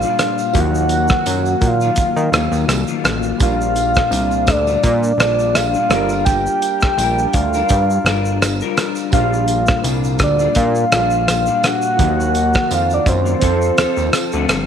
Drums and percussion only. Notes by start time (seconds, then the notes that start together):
0.02 shaker
0.19 cross-stick, closed hi-hat, tambourine, shaker
0.38 tambourine, shaker
0.53 kick, closed hi-hat, tambourine, shaker
0.75 shaker
0.89 closed hi-hat, tambourine, shaker
1.08 kick, cross-stick, shaker
1.26 closed hi-hat, tambourine, shaker
1.46 tambourine, shaker
1.62 kick, closed hi-hat, tambourine, shaker
1.81 tambourine, shaker
1.96 kick, closed hi-hat, tambourine, shaker
2.17 shaker
2.33 cross-stick, closed hi-hat, tambourine, shaker
2.52 tambourine, shaker
2.69 cross-stick, closed hi-hat, tambourine, shaker
2.87 shaker
3.05 cross-stick, closed hi-hat, tambourine, shaker
3.23 shaker
3.39 kick, closed hi-hat, tambourine, shaker
3.61 shaker
3.76 closed hi-hat, tambourine, shaker
3.95 kick, cross-stick, shaker
4.12 closed hi-hat, tambourine, shaker
4.31 tambourine, shaker
4.47 kick, cross-stick, closed hi-hat, tambourine, shaker
4.67 tambourine, shaker
4.83 kick, closed hi-hat, tambourine, shaker
5.03 shaker
5.20 cross-stick, closed hi-hat, tambourine, shaker
5.39 tambourine, shaker
5.55 cross-stick, closed hi-hat, tambourine, shaker
5.74 shaker
5.90 cross-stick, closed hi-hat, tambourine, shaker
6.09 tambourine, shaker
6.26 kick, closed hi-hat, tambourine, shaker
6.46 shaker
6.62 closed hi-hat, tambourine, shaker
6.81 kick, cross-stick, shaker
6.99 closed hi-hat, tambourine, shaker
7.18 shaker
7.33 kick, closed hi-hat, tambourine, shaker
7.53 tambourine, shaker
7.69 kick, closed hi-hat, tambourine, shaker
7.90 shaker
8.06 cross-stick, closed hi-hat, tambourine, shaker
8.25 shaker
8.42 cross-stick, closed hi-hat, tambourine, shaker
8.60 shaker
8.77 cross-stick, closed hi-hat, tambourine, shaker
8.95 tambourine, shaker
9.12 kick, closed hi-hat, tambourine, shaker
9.33 shaker
9.48 closed hi-hat, tambourine, shaker
9.66 kick, cross-stick, shaker
9.84 closed hi-hat, tambourine, shaker
10.04 tambourine, shaker
10.19 kick, cross-stick, closed hi-hat, tambourine, shaker
10.39 tambourine, shaker
10.55 kick, closed hi-hat, tambourine, shaker
10.75 shaker
10.92 cross-stick, closed hi-hat, tambourine, shaker
11.11 shaker
11.28 cross-stick, closed hi-hat, tambourine, shaker
11.46 shaker
11.63 cross-stick, closed hi-hat, tambourine, shaker
11.82 shaker
11.99 kick, closed hi-hat, tambourine, shaker
12.20 shaker
12.35 closed hi-hat, tambourine, shaker
12.54 kick, cross-stick, shaker
12.71 closed hi-hat, tambourine, shaker
12.90 tambourine, shaker
13.06 kick, closed hi-hat, tambourine, shaker
13.26 shaker
13.42 kick, closed hi-hat, tambourine, shaker
13.62 shaker
13.78 cross-stick, closed hi-hat, tambourine, shaker
13.97 tambourine, shaker
14.13 cross-stick, closed hi-hat, tambourine, shaker
14.32 shaker
14.49 cross-stick, closed hi-hat, tambourine, shaker